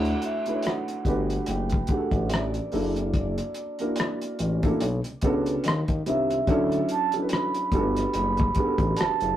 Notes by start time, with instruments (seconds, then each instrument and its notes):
Already playing: analog synth bass D2, upright piano A3 D4 E4 F#4 C#5, vibraphone F#5
0.05 closed hi-hat
0.22 vibraphone E5, closed hi-hat
0.46 upright piano A3 D4 E4 F#4 B4, closed hi-hat
0.55 upright piano C#5
0.63 vibraphone F#5, closed hi-hat
0.67 cross-stick
0.88 closed hi-hat
1.05 analog synth bass G1, upright piano A3 D4 F#4 G4 B4, kick, closed hi-hat
1.30 closed hi-hat
1.46 analog synth bass F#1, vibraphone G5, closed hi-hat
1.70 kick, closed hi-hat
1.87 upright piano A3 D4 F#4 G4, vibraphone F#5, kick, closed hi-hat
1.91 upright piano G#4
1.97 upright piano A4
2.11 analog synth bass A1, kick, closed hi-hat
2.26 vibraphone E5, closed hi-hat
2.32 vibraphone D5, cross-stick
2.54 closed hi-hat
2.72 analog synth bass F#1, upright piano A#3 D4 E4 F#4 A4, open hi-hat
2.96 closed hi-hat
3.14 vibraphone D5, kick, closed hi-hat
3.38 closed hi-hat
3.54 closed hi-hat
3.79 upright piano A#3 D4 E4 F#4 A#4, closed hi-hat
3.96 closed hi-hat
4.00 cross-stick
4.22 closed hi-hat
4.39 analog synth bass A1, closed hi-hat
4.63 upright piano A#3 D4 E4 F#4 A4, kick, closed hi-hat
4.81 analog synth bass B1, closed hi-hat
5.04 analog synth bass C#2, closed hi-hat
5.22 analog synth bass C#2, upright piano B3 C#4 D4 F#4 A4, kick, closed hi-hat
5.46 closed hi-hat
5.64 analog synth bass D#2, closed hi-hat
5.68 cross-stick
5.88 analog synth bass D#2, kick, closed hi-hat
6.06 analog synth bass C2, upright piano D#3 G3 D4 F4 A#4, vibraphone E5, closed hi-hat
6.30 closed hi-hat
6.47 analog synth bass D2, upright piano F#3 C#4 D4 E4 A4, kick, closed hi-hat
6.72 closed hi-hat
6.89 vibraphone A5, closed hi-hat
7.12 upright piano F#3 C#4 D4 E4 A4, closed hi-hat
7.22 upright piano B4
7.29 vibraphone B5, closed hi-hat
7.33 cross-stick
7.55 closed hi-hat
7.72 analog synth bass G1, upright piano G3 A3 D4 F#4 A4, kick, closed hi-hat
7.80 upright piano B3
7.97 cross-stick, closed hi-hat
8.14 analog synth bass F#1, vibraphone B5, closed hi-hat
8.37 kick, closed hi-hat
8.55 upright piano G3 B3 D4, kick, closed hi-hat
8.59 upright piano F#4 G#4
8.66 upright piano A4
8.78 analog synth bass A1, kick, closed hi-hat
8.96 analog synth bass F#1, vibraphone A5, closed hi-hat
9.01 cross-stick
9.21 analog synth bass F#1, closed hi-hat